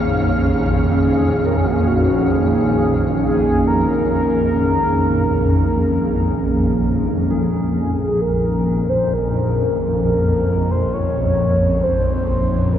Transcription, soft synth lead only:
0.95 1.48 G#4 medium
1.46 1.58 A#4 medium
1.57 1.67 G#4 medium
1.65 1.74 F#4 medium
1.73 1.88 G#4 medium
1.87 2.33 F#4 medium
2.31 3.21 G#4 medium
3.23 3.69 G#4 medium
3.67 6.39 A#4 loud
7.78 7.97 G#4 medium
7.99 8.22 G#4 medium
8.21 8.91 A#4 medium
8.89 9.15 C5 medium
9.14 10.01 A#4 loud
10.02 10.72 A#4 loud
10.71 10.95 C5 loud
10.93 11.85 C#5 loud
11.83 12.75 C5 loud
12.73 12.79 A#4 loud

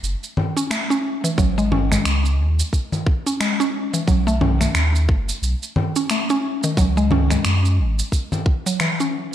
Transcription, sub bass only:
0.03 0.15 F#1 medium
1.38 1.97 G#1 loud
2.05 2.40 C#2 medium
2.38 2.62 D#2 medium
4.08 4.67 B1 loud
4.74 5.10 D#2 loud
5.09 5.32 F#1 medium
5.42 5.55 B1 medium
6.77 7.36 C#2 loud
7.45 7.80 F#2 loud
7.79 8.02 G#1 medium

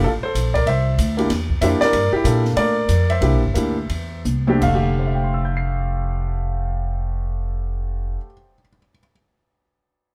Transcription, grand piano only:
0.04 0.11 F4 medium
0.04 0.09 A4 medium
0.23 0.54 A4 medium
0.23 0.53 C5 medium
0.54 0.66 A#4 medium
0.54 0.65 D5 medium
0.67 1.16 C5 medium
0.67 1.15 E5 medium
1.17 1.28 A#3 medium
1.17 1.28 D4 medium
1.17 1.29 E4 medium
1.17 1.29 G4 medium
1.61 1.93 A#3 medium
1.61 1.93 D4 medium
1.61 1.93 E4 medium
1.61 1.94 G4 medium
1.61 1.69 C5 medium
1.61 1.66 E5 medium
1.81 2.12 A#4 medium
1.81 2.10 D5 loud
2.13 2.44 E4 medium
2.13 2.42 G4 medium
2.24 2.72 A#3 medium
2.24 2.73 D4 soft
2.24 2.73 F4 medium
2.24 2.74 A4 medium
2.57 3.07 A#4 medium
2.57 3.11 D5 medium
3.10 4.22 C5 medium
3.10 4.21 E5 medium
3.21 3.40 A#3 medium
3.21 3.40 D4 soft
3.21 3.41 E4 medium
3.21 3.41 G4 medium
3.54 3.74 A#3 medium
3.54 3.75 D4 soft
3.54 3.75 E4 soft
3.54 3.75 G4 medium
4.47 4.49 F2 medium
4.47 4.60 A3 medium
4.47 4.60 C4 medium
4.47 4.61 D4 medium
4.47 4.61 G4 medium
4.58 8.16 D3 medium
4.63 8.25 A3 medium
4.63 8.17 F5 medium
4.75 8.33 G4 medium
4.99 8.53 C5 soft
5.07 8.61 E5 soft
5.15 8.69 G5 soft
5.24 8.78 C6 soft
5.34 8.88 E6 soft
5.45 8.99 G6 soft
5.57 9.11 C7 soft

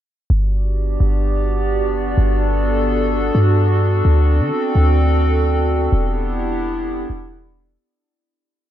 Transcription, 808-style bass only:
0.30 0.97 G1 loud
1.00 1.84 G1 loud
1.82 2.16 F#1 medium
2.18 3.31 G1 loud
3.35 4.02 G2 loud
4.05 4.42 D2 loud
4.40 4.51 D3 medium
4.75 5.89 D2 loud
5.92 7.06 E1 loud
7.10 7.77 E1 loud

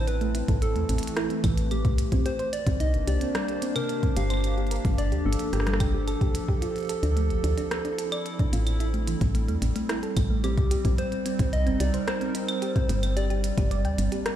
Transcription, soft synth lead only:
0.01 0.09 C5 medium
0.08 0.64 B4 loud
0.62 1.44 A4 medium
1.71 2.27 G4 medium
2.26 2.54 C5 loud
2.53 2.82 D5 medium
2.80 3.09 D#5 loud
3.07 3.77 D5 loud
3.76 4.18 A#4 loud
4.17 4.98 F5 loud
4.98 5.27 D5 loud
5.26 6.35 A4 loud
10.44 11.00 G4 loud
10.98 11.54 C5 loud
11.53 11.80 D#5 loud
11.80 12.09 D5 loud
12.07 13.18 C5 loud
13.17 14.36 D5 loud

